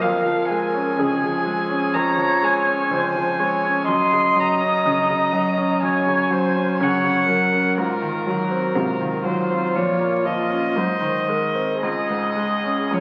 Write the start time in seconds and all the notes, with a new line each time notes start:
0.02 F2 A#4 F5
0.25 F3
0.50 G#3 G#5
0.74 C#4
0.98 F2 C#3 G#4
1.23 F3
1.46 G#3
1.69 C#4
1.94 F2 C#5 A#5
2.17 F3
2.42 G#3 G#5
2.67 C#4
2.91 F2 C#3 C5
3.16 F3
3.39 G#3 C#5
3.65 C#4
3.88 F#2 D#5 C6
4.12 C#3
4.36 F#3 A#5
4.61 C#4
4.86 F#2 C#3
5.09 C#3
5.33 F#3
5.58 C#4
5.83 F#2 C#5 G#5
6.07 C#3
6.31 F#3 C5
6.56 C#4
6.80 F#2 C#3 C#5 F#5
7.04 C#3
7.28 F#3 A#4
7.52 C#4
7.78 G#2 F4 A#4
8.02 D#3
8.26 F#3 F#4
8.51 C4
8.75 G#2 C3 F4
9.01 D#3
9.24 F#3 F4 C5
9.50 C4
9.75 A#2 F3 C#5
10.01 A#3
10.25 F3 D#5
10.50 C#4
10.76 G#2 F#3 C5
11.01 D#3
11.28 G#3 A#4
11.55 C4
11.82 C#2 G#4 D#5
12.10 G#2
12.36 G#3
12.64 C#4
12.90 C#2 F3 C#5